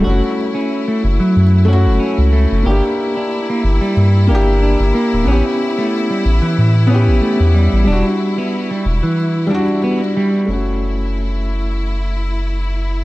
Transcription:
X:1
M:4/4
L:1/16
Q:"Swing 16ths" 1/4=92
K:F#phr
V:1 name="String section"
E16- | E16- | E16- | E16 |
E16 |]
V:2 name="Felt piano"
[A,CF]8- [A,CF]2 [A,CF]6 | [_B,DG]8- [B,DG]2 [B,DG]6 | [B,CG]8- [B,CG]2 [B,CG]6 | [G,DF]8- [G,DF]2 [G,DF]6 |
[A,CF]16 |]
V:3 name="Clean electric guitar"
F z2 C2 A, z F,3 F2 C z A,2 | G z2 D2 _B, z G,3 G2 D z B,2 | C z2 A,2 G, z E,3 C2 A, z G,2 | D z2 B,2 G, z E,3 D2 B, z G,2 |
z16 |]
V:4 name="Sub bass" clef=bass
F,,, z4 z F,,, z F,,3 F,,, z C,,2 F,,, | G,,, z4 z G,,, z G,,2 G,,,3 G,,, z D,,, | A,,, z4 z A,,, z A,,3 A,,, z E,,2 A,,, | E,,, z4 z E,,, z8 z |
F,,,16 |]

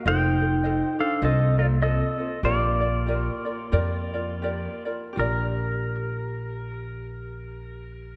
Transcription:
X:1
M:4/4
L:1/8
Q:"Swing" 1/4=89
K:Bb
V:1 name="Pedal steel guitar"
[cg]3 [Af] [Ae] [Fd] [Ae]2 | [Fd]6- [Fd] z | B8 |]
V:2 name="Ukulele"
[FAce] [FAc] [FAce] [FAc] [FAce] [FAc] [FAce] [FAc] | [FGBd] [FBd] [FGBd] [FBd] [FGBd] [FBd] [FGBd] [FBd] | [FGBd]8 |]
V:3 name="Vibraphone"
E3 D C B, C2 | B,6- B, z | G8 |]
V:4 name="Upright bass" clef=bass
F,,,4 C,,4 | B,,,4 F,,4 | B,,,8 |]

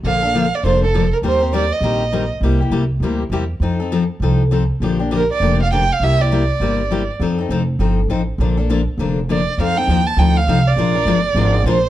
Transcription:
X:1
M:4/4
L:1/8
Q:"Swing" 1/4=201
K:Bb
V:1 name="Violin"
f3 d c A2 B | c2 d e4 z | z8 | z8 |
z2 B d2 f g f | =e d6 z | z8 | z6 d2 |
f g2 a g f2 d- | d6 c2 |]
V:2 name="Steel-string acoustic guitar"
[D,F,B,DA] [B,DA] [D,F,B,DA] z [D,F,B,DA] z [D,F,B,DA] z | [E,G,CGB] [CGB] [E,G,CGB] z [E,G,CGB] z [E,G,CGB] z | [C,G,B,=EG] [B,EG] [C,G,B,EG] z [C,G,B,EG] z [C,G,B,EG] z | [F,CEA] [CEA] [F,CEA] z [F,CEA] z [F,CEA] z |
[D,F,B,DG] [B,DG] [D,F,B,DG] z [D,F,B,DG] z [D,F,B,DG] z | [C,G,B,=EG] [B,EG] [C,G,B,EG] z [C,G,B,EG] z [C,G,B,EG] z | [F,CEA] [CEA] [F,CEA] z [F,CEA] z [F,CEA] z | [D,F,B,DA] [B,DA] [D,F,B,DA] z [D,F,B,DA] z [D,F,B,DA] z |
[F,CEA] [CEA] [F,CEA] z [F,CEA] z [F,CEA] z | [F,_A,DFB] [DFB] [F,A,DFB] z [F,A,DFB] z [F,A,DFB] z |]
V:3 name="Upright bass" clef=bass
B,,,4 F,,,4 | E,,4 B,,,4 | C,,2 C,,2 D,,2 =E,,2 | F,,4 C,,4 |
B,,,4 F,,,4 | C,,4 G,,,4 | F,,2 F,,,2 G,,,2 A,,,2 | B,,,4 F,,,4 |
F,,2 E,,2 D,,2 C,,2 | B,,,2 G,,,2 _A,,,2 B,,,2 |]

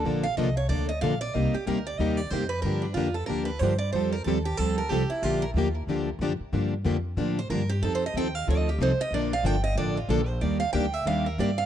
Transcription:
X:1
M:4/4
L:1/8
Q:"Swing" 1/4=185
K:Bb
V:1 name="Steel-string acoustic guitar"
z f e _d =d e f d | e G B d e d c _c | B D F A B _c =c d | c B A G A B G =E |
F B z6 | z4 z c B G | (3A c e g f e G c e | d f g e d F A c |
[K:Eb] d f g _f =f B d f |]
V:2 name="Steel-string acoustic guitar"
[D,F,B,DA] z [D,F,B,DA] z [D,F,B,DA] z [D,F,B,DA] z | [C,G,B,EG] z [C,G,B,EG] z [C,G,B,EG] z [C,G,B,EG] z | [D,F,B,DG] z [D,F,B,DG] z [D,F,B,DG] z [D,F,B,DG] z | [F,G,CGA] z [F,G,CGA] z [F,G,CGA] z [F,G,CGA] z |
[D,F,B,DG] z [D,F,B,DG] z [D,F,B,DG] z [D,F,B,DG] z | [D,F,B,DG] z [D,F,B,DG] z [D,F,B,DG] z [D,F,B,DG] z | [F,CEA] z [F,CEA] z [F,CEA] z [F,CEA] z | [D,F,B,DA] z [D,F,B,DA] z [D,F,B,DA] z [D,F,B,DA] z |
[K:Eb] [E,G,B,DG] z [E,G,B,DG] z [E,G,B,DG] z [E,G,B,DG] z |]
V:3 name="Steel-string acoustic guitar"
[D,F,B,DA] z [D,F,B,DA] z [D,F,B,DA] z [D,F,B,DA] z | [C,G,B,EG] z [C,G,B,EG] z [C,G,B,EG] z [C,G,B,EG] z | [D,F,B,DG] z [D,F,B,DG] z [D,F,B,DG] z [D,F,B,DG] z | [F,G,CFA] z [F,G,CFA] z [F,G,CFA] z [F,G,CFA] z |
[D,F,B,DG] z [D,F,B,DG] z [D,F,B,DG] z [D,F,B,DG] z | [D,F,B,DG] z [D,F,B,DG] z [D,F,B,DG] z [D,F,B,DG] z | [F,CEA] z [F,CEA] z [F,CEA] z [F,CEA] z | [D,F,B,DA] z [D,F,B,DA] z [D,F,B,DA] z [D,F,B,DA] z |
[K:Eb] [E,G,B,DG] z [E,G,B,DG] z [E,G,B,DG] z [E,G,B,DG] z |]
V:4 name="Upright bass" clef=bass
B,,,2 C,,2 D,,2 B,,,2 | C,, z D,,2 E,,2 F,,2 | G,,2 F,,2 D,,2 G,,2 | z2 E,,2 D,,2 C,, z |
B,,,2 E,,2 D,,2 _G,, z | G,,2 F,,2 A,,2 G,,2 | F,,2 E,,2 D,,2 C,, z | B,,,2 G,,,2 A,,,2 B,,,2 |
[K:Eb] E,,2 D,,2 E,,2 G,,2 |]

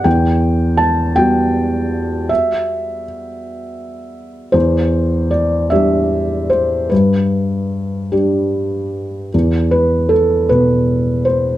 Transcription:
X:1
M:6/8
L:1/8
Q:3/8=52
K:Em
V:1 name="Felt piano"
g2 a g3 | e2 z4 | c2 d e2 c | B3 z3 |
z B A B2 c |]
V:2 name="Felt piano" clef=bass
E,,3 [G,B,F]3- | [G,B,F]6 | E,,3 [G,DG]3 | G,,3 [G,DG]3 |
E,,3 B,,3 |]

